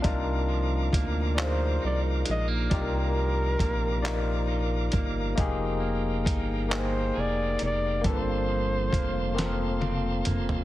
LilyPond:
<<
  \new Staff \with { instrumentName = "Tonewheel organ" } { \time 6/8 \key c \minor \tempo 4. = 45 << { <bes' bes''>2.~ | <bes' bes''>2.~ | <bes' bes''>2. | <bes c'''>2. | } \\ { <f'' d'''>2.~ | <f'' d'''>2. | <f'' g''>2. | <f'' a''>2. | } >> }
  \new Staff \with { instrumentName = "Flugelhorn" } { \time 6/8 \key c \minor r4. c''8 d''8 ees''8 | bes'2 r4 | r4. c''8 d''8 d''8 | c''2 r4 | }
  \new Staff \with { instrumentName = "Tine electric piano" } { \time 6/8 \key c \minor <d' ees' f' bes'>4 r8 <ees' f' aes' bes' d''>4 r8 | <ees' f' g' d''>4 r8 <ees' f' bes' d''>4 r8 | <bes ees' g' aes'>4 r8 <bes ees' aes' g''>4 r8 | <bes c' f' a'>4 r8 <bes c' f' a' bes'>4 r8 | }
  \new Staff \with { instrumentName = "Clean electric guitar" } { \time 6/8 \key c \minor c8 f8 bes8 f8 ees'8 aes16 bes16 | c8 f8 bes8 f8 ees'8 bes8 | f8 bes8 ees'8 bes8 aes'8 ees'8 | g,8 f8 bes8 f8 c'8 bes8 | }
  \new Staff \with { instrumentName = "Analog synth bass" } { \clef bass \time 6/8 \key c \minor c,4 d,4 c,8 bes,,8 | c,4 bes,,4. g,,8 | f,,4 g,,4 f,,8 f,,8 | g,,4 f,,4. f,,8 | }
  \new DrumStaff \with { instrumentName = "Drums" } \drummode { \time 6/8 <hh bd>4 <hh bd>8 <hc hh>4 hh8 | <hh bd>4 <hh bd>8 <hc hh>4 <hh bd>8 | <hh bd>4 <hh bd>8 <hc hh>4 hh8 | <hh bd>4 <hh bd>8 <hh sn>8 tommh8 <hh toml>16 tomfh16 | }
>>